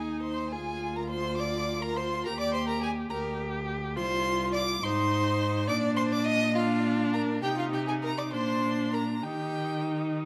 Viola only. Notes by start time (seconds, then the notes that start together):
Already playing: D#4
0.54 F4
2.26 G4
3.11 G4
3.96 F4
4.83 D#4
5.68 D4
6.56 D4
7.43 D#4
8.32 D4
9.23 D#4